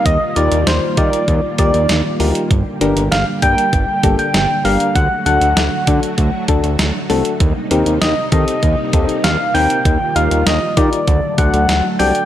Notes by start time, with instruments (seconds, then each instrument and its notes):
Already playing: string machine G3 A#3
0.06 analog synth bass D#2, string machine D#3 F4, soft synth lead D#5, kick, closed hi-hat
0.36 analog synth bass D#2, synth keys D#4 F4 G4 A#4, soft synth lead D5, closed hi-hat
0.52 analog synth bass D#2, closed hi-hat
0.67 analog synth bass D#2, soft synth lead C5, snare, closed hi-hat
0.97 analog synth bass D#3, synth keys D#4 F4 G4 A#4, soft synth lead D5, kick, closed hi-hat
1.13 closed hi-hat
1.28 analog synth bass D#2, kick, closed hi-hat
1.58 analog synth bass D#2, synth keys D#4 F4 G4 A#4, soft synth lead D5, kick, closed hi-hat
1.74 analog synth bass D#2, closed hi-hat
1.89 analog synth bass D#2, snare, closed hi-hat
2.20 analog synth bass D2, synth keys D#4 F4 G4 A#4, open hi-hat
2.35 closed hi-hat
2.51 analog synth bass G1, string machine D3 G3 G4, kick, closed hi-hat
2.81 analog synth bass G1, synth keys A#3 D4 G4 A#4, closed hi-hat
2.96 analog synth bass G1, closed hi-hat
3.12 analog synth bass G1, soft synth lead F5, snare, closed hi-hat
3.42 analog synth bass G2, synth keys A#3 D4 G4 A#4, soft synth lead G5, kick, closed hi-hat
3.58 closed hi-hat
3.73 analog synth bass G1, kick, closed hi-hat
4.03 analog synth bass G1, synth keys A#3 D4 G4 A4, kick, closed hi-hat
4.19 soft synth lead G5, closed hi-hat
4.34 analog synth bass G1, snare, closed hi-hat
4.65 analog synth bass G1, synth keys A#3 D4 G4 A#4, soft synth lead F5, open hi-hat
4.80 closed hi-hat
4.96 analog synth bass D2, string machine F#3 A3 F#4, soft synth lead F#5, kick, closed hi-hat
5.26 analog synth bass D2, synth keys A3 D4 F#4 A4, soft synth lead F#5, closed hi-hat
5.41 analog synth bass D2, closed hi-hat
5.57 analog synth bass D2, snare, closed hi-hat
5.87 analog synth bass D3, synth keys A3 D4 F#4 A4, kick, closed hi-hat
6.03 closed hi-hat
6.18 analog synth bass D2, kick, closed hi-hat
6.48 analog synth bass D2, synth keys A3 D4 F#4 A4, kick, closed hi-hat
6.64 analog synth bass D2, closed hi-hat
6.79 analog synth bass D2, snare, closed hi-hat
7.10 analog synth bass C2, synth keys A3 D4 F#4 A4, open hi-hat
7.25 closed hi-hat
7.40 analog synth bass D#2, string machine C3 G3 A#3 D#4, kick, closed hi-hat
7.71 analog synth bass D#2, synth keys C4 D#4 G4 A#4, closed hi-hat
7.86 analog synth bass D#2, closed hi-hat
8.01 analog synth bass D#2, soft synth lead D#5, snare, closed hi-hat
8.32 analog synth bass D#3, synth keys C4 D#4 G4 A4, soft synth lead D#5, kick, closed hi-hat
8.48 closed hi-hat
8.63 analog synth bass D#2, kick, closed hi-hat
8.93 analog synth bass D#2, synth keys C4 D#4 G4 A4, kick, closed hi-hat
9.09 closed hi-hat
9.24 analog synth bass D#2, soft synth lead F5, snare, closed hi-hat
9.54 analog synth bass D#2, synth keys C4 D#4 G4 A#4, soft synth lead G5, open hi-hat
9.70 closed hi-hat
9.85 analog synth bass D#2, string machine D#3 F4, kick, closed hi-hat
10.16 analog synth bass D#2, synth keys D#4 F4 G4 A#4, soft synth lead F5, closed hi-hat
10.31 analog synth bass D#2, closed hi-hat
10.46 analog synth bass D#2, soft synth lead D#5, snare, closed hi-hat
10.77 analog synth bass D#3, synth keys D#4 F4 G4 A#4, soft synth lead D5, kick, closed hi-hat
10.93 closed hi-hat
11.07 analog synth bass D2, string machine D3 F#3 A3 A4, kick, closed hi-hat
11.38 analog synth bass D2, synth keys D4 F#4 A4 D5, soft synth lead F#5, kick, closed hi-hat
11.54 analog synth bass D2, closed hi-hat
11.69 analog synth bass D2, snare, closed hi-hat
11.99 analog synth bass C2, synth keys D4 F#4 A4 D5, soft synth lead G5, open hi-hat
12.15 closed hi-hat